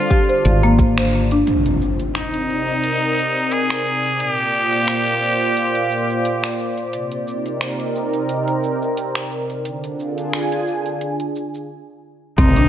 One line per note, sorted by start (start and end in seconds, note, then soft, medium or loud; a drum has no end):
0.00 1.47 D3 medium
0.00 1.47 D4 medium
0.00 0.79 F4 loud
0.00 2.52 F4 medium
0.10 0.27 G4 medium
0.10 kick loud
0.10 closed hi-hat medium
0.10 shaker soft
0.29 0.61 C5 medium
0.29 closed hi-hat soft
0.45 1.42 G#1 loud
0.45 udu medium
0.45 shaker medium
0.63 0.78 A#3 loud
0.63 closed hi-hat soft
0.63 shaker soft
0.79 kick loud
0.79 closed hi-hat medium
0.79 shaker soft
0.98 1.07 C5 medium
0.98 finger snap medium
0.98 closed hi-hat soft
1.13 shaker medium
1.31 1.46 D4 medium
1.31 closed hi-hat soft
1.31 shaker soft
1.47 4.20 C3 medium
1.47 closed hi-hat medium
1.47 impact medium
1.47 shaker soft
1.53 5.30 C4 medium
1.66 closed hi-hat soft
1.81 shaker medium
1.94 4.20 D#4 medium
2.00 closed hi-hat soft
2.00 shaker soft
2.15 3.54 D#4 medium
2.15 finger snap medium
2.15 closed hi-hat medium
2.15 shaker soft
2.30 5.30 A#4 medium
2.30 10.75 D5 medium
2.30 closed hi-hat soft
2.50 shaker medium
2.68 closed hi-hat soft
2.68 shaker soft
2.84 closed hi-hat medium
2.84 shaker soft
3.02 closed hi-hat soft
3.18 shaker medium
3.37 shaker soft
3.51 4.23 G#4 medium
3.51 closed hi-hat medium
3.51 shaker soft
3.70 finger snap medium
3.70 closed hi-hat soft
3.86 shaker medium
4.04 closed hi-hat soft
4.04 shaker soft
4.20 6.93 A#2 medium
4.20 6.59 G4 loud
4.20 closed hi-hat medium
4.20 shaker soft
4.38 closed hi-hat soft
4.44 8.02 A#3 medium
4.44 8.02 F4 medium
4.54 8.02 C5 medium
4.54 shaker medium
4.73 closed hi-hat soft
4.73 shaker soft
4.88 finger snap medium
4.88 closed hi-hat medium
4.88 shaker soft
5.07 closed hi-hat soft
5.23 shaker medium
5.41 closed hi-hat soft
5.41 shaker soft
5.57 closed hi-hat medium
5.57 shaker soft
5.75 closed hi-hat soft
5.91 shaker medium
6.10 shaker soft
6.25 closed hi-hat medium
6.25 shaker soft
6.44 finger snap medium
6.44 closed hi-hat soft
6.60 shaker medium
6.77 closed hi-hat soft
6.77 shaker soft
6.93 9.65 C3 medium
6.93 closed hi-hat medium
6.93 shaker soft
7.11 10.75 C4 medium
7.11 closed hi-hat soft
7.27 9.65 D#4 medium
7.27 shaker medium
7.37 10.75 A#4 medium
7.46 closed hi-hat soft
7.46 shaker soft
7.61 finger snap medium
7.61 closed hi-hat medium
7.61 shaker soft
7.80 closed hi-hat soft
7.95 shaker medium
8.13 closed hi-hat soft
8.13 shaker soft
8.29 closed hi-hat medium
8.29 shaker soft
8.48 closed hi-hat soft
8.63 shaker medium
8.82 shaker soft
8.97 closed hi-hat medium
8.97 shaker soft
9.15 finger snap medium
9.15 closed hi-hat soft
9.31 shaker medium
9.50 closed hi-hat soft
9.50 shaker soft
9.65 11.70 D3 medium
9.65 closed hi-hat medium
9.65 shaker soft
9.84 closed hi-hat soft
9.89 11.70 D4 medium
9.89 11.70 F4 medium
10.00 11.70 G#4 medium
10.00 shaker medium
10.18 11.70 G#5 medium
10.18 closed hi-hat soft
10.18 shaker soft
10.33 finger snap medium
10.33 closed hi-hat medium
10.33 shaker soft
10.52 closed hi-hat soft
10.68 shaker medium
10.86 closed hi-hat soft
10.86 shaker soft
11.01 closed hi-hat medium
11.01 shaker soft
11.20 closed hi-hat soft
11.36 shaker medium
11.54 shaker soft
12.38 12.69 C2 medium
12.38 12.69 C3 medium
12.38 12.56 C4 loud
12.38 12.69 D#4 loud
12.38 kick loud
12.38 closed hi-hat medium
12.38 impact medium
12.38 shaker soft
12.47 12.69 C4 medium
12.56 12.69 D4 medium
12.56 closed hi-hat soft